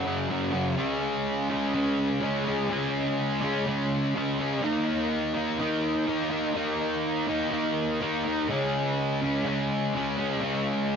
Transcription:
Already playing: F#2 C#4
0.05 C#3 F#3
0.29 F#2 C#3 F#3
0.52 C#3 F#3
0.77 C#3 G#3 C#4
1.49 G#3 C#4
1.73 C#3 G#3 C#4
2.21 C#3 G#3 C#4
2.45 G#3 C#4
2.69 C#3 G#3 C#4
3.41 G#3 C#4
3.66 C#3 G#3 C#4
4.15 C#3 G#3 C#4
4.39 G#3 C#4
4.62 D#3 A#3 D#4
5.34 A#3 D#4
5.58 D#3 A#3 D#4
6.06 D#3 A#3 D#4
6.30 A#3 D#4
6.54 D#3 A#3 D#4
7.27 A#3 D#4
7.51 D#3 A#3 D#4
8.01 D#3 A#3 D#4
8.24 A#3 D#4
8.48 C#3 G#3 C#4
9.22 G#3 C#4
9.45 C#3 G#3 C#4
9.94 C#3 G#3 C#4
10.17 G#3 C#4
10.41 C#3 G#3 C#4

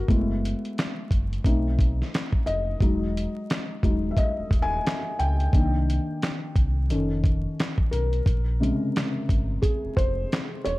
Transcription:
Already playing: F#4
0.08 F#1 G#3 A3 B3 E4, kick, closed hi-hat
0.45 closed hi-hat
0.65 closed hi-hat
0.78 snare, clap, closed hi-hat
1.11 F#1, kick, closed hi-hat
1.33 closed hi-hat
1.44 B1 A3 C4 D#4, kick, closed hi-hat
1.79 kick, closed hi-hat
2.02 snare
2.14 snare, clap, closed hi-hat
2.33 kick
2.46 F1 D#5, closed hi-hat
2.81 E1 F#3 G#3 D#4, kick, closed hi-hat
3.17 closed hi-hat
3.50 snare, clap, closed hi-hat
3.83 D#1 F#3 G#3 D#4, kick, closed hi-hat
4.11 E5
4.17 D#5, kick, closed hi-hat
4.38 D#1
4.51 D#1, kick, closed hi-hat
4.62 G#5
4.87 snare, clap, closed hi-hat
5.19 C#2 G5, closed hi-hat
5.40 closed hi-hat
5.53 C2 D#3 A#3 D4, kick, closed hi-hat
5.90 closed hi-hat
6.22 snare, clap, closed hi-hat
6.56 C2, kick, closed hi-hat
6.90 F1 D#3 C#4 A4, closed hi-hat
7.24 kick, closed hi-hat
7.60 snare, clap, closed hi-hat
7.78 kick
7.91 B1 A#4, closed hi-hat
8.13 closed hi-hat
8.26 A#1, kick, closed hi-hat
8.60 C3 C#3 G#3, closed hi-hat
8.96 snare, clap, closed hi-hat
9.29 G1, kick, closed hi-hat
9.62 G#4, kick, closed hi-hat
9.84 F1
9.97 F1 C5, kick, closed hi-hat
10.32 snare, clap, closed hi-hat
10.64 E1 C#5, closed hi-hat

